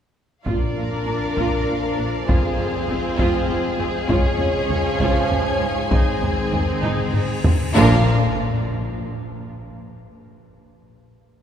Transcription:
0.45 0.55 A#1 soft
0.45 4.05 F2 medium
0.45 1.34 A#2 medium
0.45 0.55 A#2 soft
0.45 4.05 F3 medium
0.45 2.25 A#3 soft
0.45 2.25 D4 medium
0.45 2.25 D4 soft
0.45 0.75 F4 medium
0.45 5.88 F4 soft
0.45 2.25 A#4 soft
0.45 2.24 D5 soft
0.45 4.06 F5 soft
0.45 taiko medium
0.77 0.86 A#1 soft
0.77 0.86 A#2 soft
0.77 0.85 F4 soft
1.07 1.16 A#1 soft
1.07 1.16 A#2 soft
1.07 1.15 D4 soft
1.37 1.47 A#1 medium
1.37 1.46 A#2 soft
1.37 1.66 F4 medium
1.37 taiko medium
1.68 1.77 A#1 soft
1.68 1.76 A#2 soft
1.68 1.76 F4 soft
1.98 2.07 A#1 soft
1.98 2.06 A#2 soft
1.98 2.06 D4 soft
2.27 2.37 F1 medium
2.27 3.15 F2 medium
2.27 2.37 F2 medium
2.27 5.88 G#3 medium
2.27 4.05 C4 medium
2.27 4.10 C4 medium
2.27 2.57 F4 medium
2.27 5.87 G#4 medium
2.27 7.76 G#4 medium
2.27 4.09 C5 medium
2.27 taiko medium
2.58 2.67 F1 medium
2.58 2.66 F2 medium
2.58 2.68 F4 soft
2.88 2.97 F1 medium
2.88 2.96 F2 medium
2.88 2.98 C4 medium
3.19 3.27 F1 medium
3.19 3.27 F2 medium
3.19 3.47 F4 medium
3.19 taiko medium
3.49 3.57 F1 medium
3.49 3.57 F2 medium
3.49 3.57 F4 medium
3.79 3.87 F1 medium
3.79 3.87 F2 medium
3.79 3.87 C4 soft
4.08 4.17 C#2 medium
4.08 7.40 G#2 medium
4.08 5.87 F3 medium
4.08 5.91 C#4 medium
4.08 5.88 C#4 medium
4.08 4.37 F4 medium
4.08 5.88 C#5 medium
4.08 7.75 G#5 medium
4.08 taiko medium
4.39 4.47 C#2 medium
4.39 4.47 F4 medium
4.39 taiko low soft
4.69 4.77 C#2 medium
4.69 4.78 C#4 soft
4.69 taiko low medium
4.99 5.07 C#2 medium
4.99 5.08 C#2 medium
4.99 5.28 F4 medium
4.99 taiko medium
5.30 5.38 C#2 soft
5.30 5.38 F4 medium
5.30 taiko low medium
5.60 5.68 C#2 soft
5.60 5.69 C#2 soft
5.60 5.69 C#4 soft
5.91 5.99 G#1 medium
5.91 5.99 G#2 medium
5.91 7.40 D#3 medium
5.91 7.41 G#3 medium
5.91 7.76 C4 medium
5.91 7.41 C4 medium
5.91 6.20 D#4 medium
5.91 7.75 D#4 medium
5.91 7.52 G#4 medium
5.91 7.52 C5 soft
5.91 taiko medium
5.91 cymbal swell soft
6.21 6.29 G#1 soft
6.21 6.31 G#2 soft
6.21 6.30 D#4 soft
6.21 taiko low soft
6.51 6.59 G#1 soft
6.51 6.61 G#2 soft
6.51 6.61 C4 soft
6.51 taiko low medium
6.82 6.90 G#1 medium
6.82 6.92 G#2 medium
6.82 7.12 D#4 medium
6.82 taiko mid medium
7.13 7.21 G#1 soft
7.13 7.22 G#2 soft
7.13 7.22 D#4 soft
7.13 taiko low-mid medium
7.44 7.52 G#1 soft
7.44 7.53 G#2 soft
7.44 7.53 C4 soft
7.44 taiko low loud
7.75 8.10 A#1 loud
7.75 8.02 F2 medium
7.75 8.09 A#2 medium
7.75 8.04 A#2 loud
7.75 8.01 F3 medium
7.75 8.01 A#3 medium
7.75 8.10 A#3 medium
7.75 8.01 D4 medium
7.75 8.09 D4 medium
7.75 8.10 D4 medium
7.75 8.09 F4 medium
7.75 8.09 A#4 medium
7.75 8.10 A#4 medium
7.75 8.10 F5 medium
7.75 impact medium

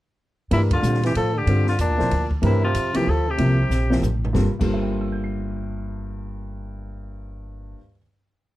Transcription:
0.50 0.82 G2 medium
0.50 0.60 A#2 medium
0.50 0.69 E3 medium
0.50 0.69 A3 soft
0.50 0.69 D4 soft
0.50 0.62 E4 medium
0.50 0.69 G4 soft
0.50 0.70 A#4 medium
0.50 ride medium
0.71 1.01 D3 medium
0.71 1.02 F4 medium
0.71 kick medium
0.71 ride medium
0.82 1.14 A#2 medium
0.82 1.01 D3 soft
0.82 1.01 G3 soft
0.82 1.01 C4 soft
0.82 1.02 F4 soft
0.82 1.02 C5 medium
0.82 hi-hat pedal medium
0.94 snare soft
1.03 1.14 E3 medium
1.03 1.16 G4 medium
1.03 snare soft
1.03 ride soft
1.15 1.46 A2 medium
1.15 1.37 F3 medium
1.15 1.39 A4 loud
1.15 ride medium
1.36 1.67 D3 medium
1.36 1.68 G4 medium
1.46 1.78 G2 medium
1.46 1.65 D3 medium
1.46 1.65 G3 soft
1.46 1.65 C4 medium
1.46 1.66 F4 medium
1.46 1.66 A4 medium
1.46 ride medium
1.67 1.79 D3 medium
1.67 1.79 F4 medium
1.67 snare soft
1.79 1.90 E2 medium
1.79 2.28 A#2 medium
1.79 2.28 D4 medium
1.79 hi-hat pedal medium
1.79 ride medium
1.90 2.00 D2 soft
1.97 2.10 A#1 medium
1.97 2.09 F3 medium
1.97 2.09 A#3 medium
1.97 2.09 E4 medium
1.97 2.10 A4 medium
1.97 2.10 C5 medium
1.97 snare soft
2.11 2.42 D2 medium
2.11 ride medium
2.31 kick soft
2.42 2.74 G2 medium
2.42 2.62 C3 medium
2.42 2.60 E3 medium
2.42 2.60 A3 medium
2.42 2.61 D4 medium
2.42 2.61 G4 medium
2.42 2.61 A#4 medium
2.42 ride medium
2.46 2.63 E4 medium
2.63 2.98 C3 medium
2.63 2.98 F4 medium
2.74 2.93 F2 medium
2.74 hi-hat pedal soft
2.74 ride medium
2.94 3.05 C3 medium
2.94 3.09 E3 medium
2.94 3.05 F3 medium
2.94 3.06 A#3 medium
2.94 3.06 E4 medium
2.94 3.06 G4 medium
2.94 3.11 G4 medium
2.94 muted upright bass stroke soft
2.94 ride medium
3.07 3.38 D2 medium
3.07 3.30 F3 medium
3.07 3.32 A4 medium
3.28 4.03 C3 medium
3.28 4.04 G4 medium
3.37 3.69 C2 medium
3.37 3.56 C3 medium
3.37 3.56 F3 soft
3.37 3.57 A#3 medium
3.37 3.57 E4 medium
3.37 3.57 G4 medium
3.37 ride medium
3.69 4.01 A#1 medium
3.69 snare soft
3.69 hi-hat pedal medium
3.90 4.01 C3 medium
3.90 4.01 F3 medium
3.90 4.01 A#3 medium
3.90 4.01 E4 medium
3.90 4.01 G4 medium
3.90 snare medium
4.02 4.33 A1 medium
4.02 hi-hat pedal medium
4.02 mid tom medium
4.24 mid tom medium
4.33 4.46 G1 medium
4.33 4.46 G2 medium
4.33 4.46 G3 medium
4.33 4.46 A#3 medium
4.33 4.47 F4 medium
4.33 4.47 A4 medium
4.33 kick medium
4.33 snare medium
4.59 7.73 G1 medium
4.59 7.76 G2 medium
4.59 7.76 G3 medium
4.59 7.77 A#3 medium
4.59 7.78 F4 medium
4.59 7.78 A4 medium
4.59 kick medium
4.59 crash medium
4.67 7.73 C5 soft
4.74 7.76 E5 soft
4.83 7.81 G5 soft
4.92 7.85 C6 soft
5.01 7.90 E6 soft
5.12 7.96 G6 soft
5.24 8.01 C7 soft

